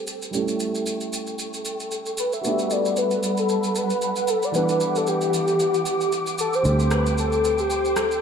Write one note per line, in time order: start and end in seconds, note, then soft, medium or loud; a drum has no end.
0.00 0.28 G3 medium
0.00 0.29 A3 medium
0.00 0.30 C4 medium
0.00 0.31 D4 medium
0.00 0.32 A4 medium
0.00 0.32 C5 medium
0.00 2.40 G5 medium
0.00 0.31 D6 medium
0.07 shaker medium
0.22 shaker medium
0.31 2.39 G3 medium
0.31 2.40 A3 medium
0.31 2.40 C#4 medium
0.31 4.51 A4 medium
0.31 2.42 C#6 medium
0.31 shaker medium
0.36 2.41 E4 medium
0.36 2.42 A4 medium
0.48 shaker medium
0.60 shaker medium
0.75 shaker medium
0.86 shaker medium
1.01 shaker soft
1.13 shaker medium
1.27 shaker soft
1.39 shaker medium
1.54 shaker medium
1.65 shaker medium
1.80 shaker medium
1.91 shaker medium
2.06 shaker medium
2.18 2.32 B4 medium
2.18 shaker loud
2.33 2.73 E5 loud
2.33 shaker medium
2.41 4.53 G3 medium
2.41 4.50 A3 medium
2.41 4.51 B3 medium
2.41 4.49 F#4 medium
2.41 6.61 F#5 medium
2.41 4.53 B5 medium
2.41 shaker medium
2.46 4.52 D4 medium
2.46 4.52 G4 medium
2.59 shaker medium
2.70 2.97 D5 loud
2.70 shaker medium
2.85 shaker medium
2.96 3.40 B4 medium
2.96 shaker medium
3.11 shaker soft
3.23 shaker medium
3.37 3.79 A4 loud
3.37 shaker medium
3.49 shaker medium
3.64 shaker medium
3.75 4.31 B4 loud
3.75 shaker loud
3.90 shaker medium
4.02 shaker medium
4.16 shaker medium
4.28 4.46 A4 medium
4.28 shaker medium
4.43 4.55 D5 medium
4.43 shaker medium
4.52 6.60 E3 medium
4.52 6.63 E3 medium
4.52 6.61 G3 medium
4.52 6.61 B3 medium
4.52 6.63 G4 medium
4.52 8.21 D6 medium
4.52 shaker medium
4.56 6.62 D4 medium
4.56 4.98 B4 loud
4.56 6.63 F#5 medium
4.69 shaker medium
4.80 shaker medium
4.95 5.08 A4 medium
4.95 shaker medium
5.07 5.32 G4 medium
5.07 shaker medium
5.21 shaker soft
5.34 6.09 G4 medium
5.34 shaker medium
5.48 shaker soft
5.60 shaker medium
5.74 shaker medium
5.86 shaker loud
6.01 shaker soft
6.12 shaker medium
6.27 shaker medium
6.38 6.56 A4 loud
6.38 shaker medium
6.53 6.94 C5 loud
6.53 shaker medium
6.63 8.21 D2 medium
6.63 8.21 D3 medium
6.63 8.21 G3 medium
6.63 8.21 A3 medium
6.63 8.21 C5 medium
6.63 8.21 G5 medium
6.63 shaker medium
6.68 8.21 C4 medium
6.68 8.21 G4 medium
6.79 shaker medium
6.91 7.18 B4 loud
6.91 cross-stick medium
6.91 shaker medium
7.06 shaker medium
7.18 7.61 A4 loud
7.18 shaker medium
7.32 shaker soft
7.44 shaker medium
7.58 7.99 G4 medium
7.58 shaker medium
7.70 shaker medium
7.85 shaker medium
7.96 8.21 A4 medium
7.96 cross-stick medium
7.96 shaker medium
8.11 shaker medium